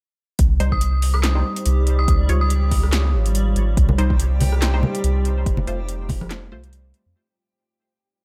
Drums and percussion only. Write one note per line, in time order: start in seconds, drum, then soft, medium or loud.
0.39 kick loud
0.39 closed hi-hat medium
0.60 closed hi-hat medium
0.72 kick medium
0.81 closed hi-hat medium
1.02 open hi-hat medium
1.14 cross-stick medium
1.23 snare loud
1.23 clap medium
1.23 closed hi-hat medium
1.56 closed hi-hat medium
1.66 closed hi-hat medium
1.87 closed hi-hat medium
2.08 kick loud
2.08 closed hi-hat medium
2.29 closed hi-hat medium
2.50 closed hi-hat medium
2.71 kick medium
2.71 open hi-hat medium
2.83 cross-stick medium
2.93 snare loud
2.93 clap loud
2.93 closed hi-hat medium
3.26 closed hi-hat medium
3.35 closed hi-hat medium
3.56 closed hi-hat medium
3.77 kick loud
3.77 closed hi-hat medium
3.89 low conga medium
3.98 closed hi-hat soft
4.10 kick medium
4.20 closed hi-hat medium
4.41 open hi-hat medium
4.41 low conga medium
4.52 cross-stick medium
4.62 snare loud
4.62 clap loud
4.62 closed hi-hat medium
4.83 low conga medium
4.95 closed hi-hat medium
5.04 closed hi-hat medium
5.25 closed hi-hat medium
5.46 kick loud
5.46 closed hi-hat medium
5.57 low conga medium
5.67 closed hi-hat soft
5.89 closed hi-hat medium
6.09 kick medium
6.09 open hi-hat medium
6.09 low conga medium
6.21 cross-stick medium
6.21 high conga medium
6.31 snare loud
6.31 clap medium
6.31 closed hi-hat medium
6.64 closed hi-hat medium
6.73 closed hi-hat medium
6.94 closed hi-hat medium